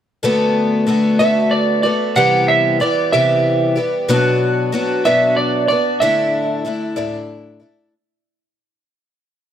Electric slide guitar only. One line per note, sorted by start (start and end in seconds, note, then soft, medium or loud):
1.19 1.53 E5 medium
1.51 1.82 D5 medium
1.83 2.17 D5 medium
2.16 2.49 F#5 medium
2.48 2.81 E5 medium
2.81 3.11 D5 medium
3.12 3.81 E5 medium
5.05 5.35 E5 loud
5.37 5.67 D5 medium
5.68 6.02 D5 medium
6.00 7.24 E5 medium